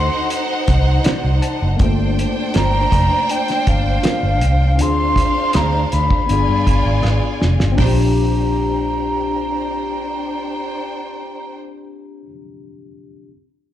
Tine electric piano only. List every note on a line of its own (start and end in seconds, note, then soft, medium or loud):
0.00 1.74 C4 medium
0.00 1.75 D#4 medium
0.00 1.76 F#4 medium
0.00 1.77 A4 medium
1.04 1.39 D5 medium
1.42 1.77 A5 medium
1.76 4.73 A#3 medium
1.76 4.75 C4 medium
1.76 4.75 F4 medium
1.83 4.77 A3 medium
4.76 6.24 C4 medium
4.76 6.25 D4 medium
4.80 6.27 F4 medium
4.80 6.28 G#4 medium
6.26 7.74 B3 medium
6.26 7.75 D4 medium
6.31 7.77 F4 medium
6.31 7.78 G#4 medium
7.72 12.21 C4 medium
7.76 12.23 D4 medium
7.81 12.26 F4 medium
7.86 12.28 G4 medium